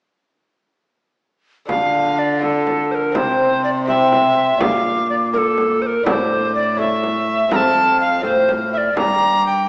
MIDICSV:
0, 0, Header, 1, 6, 480
1, 0, Start_track
1, 0, Key_signature, -1, "minor"
1, 0, Tempo, 485830
1, 1671, Time_signature, 6, 3, 24, 8
1, 9570, End_track
2, 0, Start_track
2, 0, Title_t, "Flute"
2, 0, Program_c, 0, 73
2, 1669, Note_on_c, 0, 81, 60
2, 2354, Note_off_c, 0, 81, 0
2, 2400, Note_on_c, 0, 81, 58
2, 3115, Note_on_c, 0, 84, 58
2, 3129, Note_off_c, 0, 81, 0
2, 3816, Note_off_c, 0, 84, 0
2, 3822, Note_on_c, 0, 84, 56
2, 4551, Note_on_c, 0, 86, 62
2, 4565, Note_off_c, 0, 84, 0
2, 5688, Note_off_c, 0, 86, 0
2, 5998, Note_on_c, 0, 86, 61
2, 6705, Note_on_c, 0, 85, 54
2, 6719, Note_off_c, 0, 86, 0
2, 7420, Note_off_c, 0, 85, 0
2, 7426, Note_on_c, 0, 89, 58
2, 8104, Note_off_c, 0, 89, 0
2, 8143, Note_on_c, 0, 89, 59
2, 8866, Note_on_c, 0, 86, 64
2, 8881, Note_off_c, 0, 89, 0
2, 9570, Note_off_c, 0, 86, 0
2, 9570, End_track
3, 0, Start_track
3, 0, Title_t, "Recorder"
3, 0, Program_c, 1, 74
3, 1672, Note_on_c, 1, 77, 75
3, 2161, Note_on_c, 1, 74, 72
3, 2176, Note_off_c, 1, 77, 0
3, 2393, Note_off_c, 1, 74, 0
3, 2399, Note_on_c, 1, 69, 68
3, 2879, Note_on_c, 1, 72, 62
3, 2894, Note_off_c, 1, 69, 0
3, 2912, Note_on_c, 1, 70, 68
3, 2922, Note_off_c, 1, 72, 0
3, 3118, Note_on_c, 1, 72, 70
3, 3133, Note_off_c, 1, 70, 0
3, 3592, Note_off_c, 1, 72, 0
3, 3598, Note_on_c, 1, 74, 82
3, 3657, Note_off_c, 1, 74, 0
3, 3836, Note_on_c, 1, 76, 89
3, 4550, Note_on_c, 1, 77, 82
3, 4565, Note_off_c, 1, 76, 0
3, 5031, Note_off_c, 1, 77, 0
3, 5035, Note_on_c, 1, 74, 77
3, 5095, Note_off_c, 1, 74, 0
3, 5270, Note_on_c, 1, 70, 73
3, 5313, Note_on_c, 1, 69, 79
3, 5323, Note_off_c, 1, 70, 0
3, 5750, Note_on_c, 1, 72, 59
3, 5765, Note_off_c, 1, 69, 0
3, 5796, Note_on_c, 1, 70, 64
3, 5806, Note_off_c, 1, 72, 0
3, 5990, Note_off_c, 1, 70, 0
3, 5996, Note_on_c, 1, 73, 71
3, 6043, Note_on_c, 1, 72, 77
3, 6052, Note_off_c, 1, 73, 0
3, 6462, Note_off_c, 1, 72, 0
3, 6472, Note_on_c, 1, 74, 82
3, 6705, Note_off_c, 1, 74, 0
3, 6715, Note_on_c, 1, 76, 80
3, 7435, Note_on_c, 1, 82, 79
3, 7450, Note_off_c, 1, 76, 0
3, 7469, Note_on_c, 1, 81, 86
3, 7479, Note_off_c, 1, 82, 0
3, 7901, Note_off_c, 1, 81, 0
3, 7907, Note_on_c, 1, 77, 83
3, 8140, Note_off_c, 1, 77, 0
3, 8149, Note_on_c, 1, 72, 78
3, 8412, Note_off_c, 1, 72, 0
3, 8627, Note_on_c, 1, 76, 62
3, 8671, Note_on_c, 1, 74, 68
3, 8681, Note_off_c, 1, 76, 0
3, 8859, Note_off_c, 1, 74, 0
3, 8864, Note_on_c, 1, 82, 80
3, 9333, Note_off_c, 1, 82, 0
3, 9349, Note_on_c, 1, 79, 83
3, 9570, Note_off_c, 1, 79, 0
3, 9570, End_track
4, 0, Start_track
4, 0, Title_t, "Lute"
4, 0, Program_c, 2, 24
4, 1634, Note_on_c, 2, 57, 45
4, 1646, Note_on_c, 2, 62, 44
4, 1659, Note_on_c, 2, 65, 43
4, 1670, Note_on_c, 2, 50, 47
4, 2344, Note_off_c, 2, 57, 0
4, 2356, Note_on_c, 2, 57, 39
4, 2358, Note_off_c, 2, 62, 0
4, 2366, Note_off_c, 2, 65, 0
4, 2369, Note_on_c, 2, 62, 42
4, 2380, Note_on_c, 2, 65, 46
4, 3074, Note_off_c, 2, 57, 0
4, 3075, Note_off_c, 2, 50, 0
4, 3076, Note_off_c, 2, 62, 0
4, 3080, Note_on_c, 2, 60, 44
4, 3086, Note_off_c, 2, 65, 0
4, 3091, Note_on_c, 2, 64, 45
4, 3104, Note_on_c, 2, 67, 41
4, 3120, Note_on_c, 2, 48, 50
4, 3789, Note_off_c, 2, 60, 0
4, 3800, Note_off_c, 2, 64, 0
4, 3800, Note_on_c, 2, 60, 46
4, 3807, Note_off_c, 2, 67, 0
4, 3811, Note_on_c, 2, 64, 47
4, 3824, Note_on_c, 2, 67, 42
4, 4514, Note_off_c, 2, 60, 0
4, 4516, Note_off_c, 2, 48, 0
4, 4520, Note_off_c, 2, 64, 0
4, 4520, Note_on_c, 2, 62, 49
4, 4526, Note_off_c, 2, 67, 0
4, 4530, Note_on_c, 2, 65, 47
4, 4556, Note_on_c, 2, 46, 51
4, 5935, Note_off_c, 2, 62, 0
4, 5940, Note_off_c, 2, 65, 0
4, 5953, Note_off_c, 2, 46, 0
4, 5959, Note_on_c, 2, 62, 48
4, 5969, Note_on_c, 2, 64, 47
4, 5984, Note_on_c, 2, 69, 46
4, 5995, Note_on_c, 2, 45, 58
4, 6669, Note_off_c, 2, 62, 0
4, 6673, Note_on_c, 2, 61, 47
4, 6675, Note_off_c, 2, 64, 0
4, 6683, Note_off_c, 2, 69, 0
4, 6686, Note_on_c, 2, 64, 50
4, 6699, Note_on_c, 2, 69, 48
4, 7382, Note_off_c, 2, 61, 0
4, 7386, Note_on_c, 2, 60, 44
4, 7388, Note_off_c, 2, 45, 0
4, 7392, Note_off_c, 2, 64, 0
4, 7399, Note_off_c, 2, 69, 0
4, 7401, Note_on_c, 2, 65, 48
4, 7411, Note_on_c, 2, 69, 50
4, 7423, Note_on_c, 2, 41, 54
4, 8093, Note_off_c, 2, 60, 0
4, 8102, Note_off_c, 2, 41, 0
4, 8105, Note_on_c, 2, 60, 47
4, 8109, Note_off_c, 2, 65, 0
4, 8114, Note_off_c, 2, 69, 0
4, 8119, Note_on_c, 2, 65, 47
4, 8131, Note_on_c, 2, 69, 49
4, 8143, Note_on_c, 2, 45, 50
4, 8820, Note_off_c, 2, 60, 0
4, 8821, Note_off_c, 2, 45, 0
4, 8824, Note_on_c, 2, 58, 47
4, 8827, Note_off_c, 2, 65, 0
4, 8833, Note_off_c, 2, 69, 0
4, 8837, Note_on_c, 2, 62, 43
4, 8852, Note_on_c, 2, 67, 46
4, 8862, Note_on_c, 2, 43, 56
4, 9535, Note_off_c, 2, 58, 0
4, 9548, Note_off_c, 2, 62, 0
4, 9555, Note_off_c, 2, 67, 0
4, 9570, Note_off_c, 2, 43, 0
4, 9570, End_track
5, 0, Start_track
5, 0, Title_t, "Cello"
5, 0, Program_c, 3, 42
5, 1675, Note_on_c, 3, 50, 60
5, 3118, Note_on_c, 3, 48, 62
5, 3132, Note_off_c, 3, 50, 0
5, 4540, Note_off_c, 3, 48, 0
5, 4546, Note_on_c, 3, 46, 57
5, 5959, Note_off_c, 3, 46, 0
5, 5992, Note_on_c, 3, 45, 67
5, 7397, Note_off_c, 3, 45, 0
5, 7429, Note_on_c, 3, 41, 63
5, 8140, Note_on_c, 3, 45, 65
5, 8155, Note_off_c, 3, 41, 0
5, 8859, Note_off_c, 3, 45, 0
5, 8865, Note_on_c, 3, 43, 63
5, 9570, Note_off_c, 3, 43, 0
5, 9570, End_track
6, 0, Start_track
6, 0, Title_t, "Frame drum"
6, 1668, Note_on_c, 9, 64, 77
6, 1767, Note_off_c, 9, 64, 0
6, 2393, Note_on_c, 9, 64, 45
6, 2491, Note_off_c, 9, 64, 0
6, 2637, Note_on_c, 9, 64, 45
6, 2736, Note_off_c, 9, 64, 0
6, 3112, Note_on_c, 9, 64, 78
6, 3211, Note_off_c, 9, 64, 0
6, 3831, Note_on_c, 9, 64, 47
6, 3930, Note_off_c, 9, 64, 0
6, 4076, Note_on_c, 9, 64, 46
6, 4175, Note_off_c, 9, 64, 0
6, 4550, Note_on_c, 9, 64, 80
6, 4649, Note_off_c, 9, 64, 0
6, 5270, Note_on_c, 9, 64, 46
6, 5369, Note_off_c, 9, 64, 0
6, 5511, Note_on_c, 9, 64, 44
6, 5610, Note_off_c, 9, 64, 0
6, 5992, Note_on_c, 9, 64, 82
6, 6090, Note_off_c, 9, 64, 0
6, 6707, Note_on_c, 9, 64, 47
6, 6806, Note_off_c, 9, 64, 0
6, 6951, Note_on_c, 9, 64, 45
6, 7050, Note_off_c, 9, 64, 0
6, 7423, Note_on_c, 9, 64, 77
6, 7522, Note_off_c, 9, 64, 0
6, 8146, Note_on_c, 9, 64, 46
6, 8245, Note_off_c, 9, 64, 0
6, 8386, Note_on_c, 9, 64, 46
6, 8485, Note_off_c, 9, 64, 0
6, 8861, Note_on_c, 9, 64, 78
6, 8960, Note_off_c, 9, 64, 0
6, 9570, End_track
0, 0, End_of_file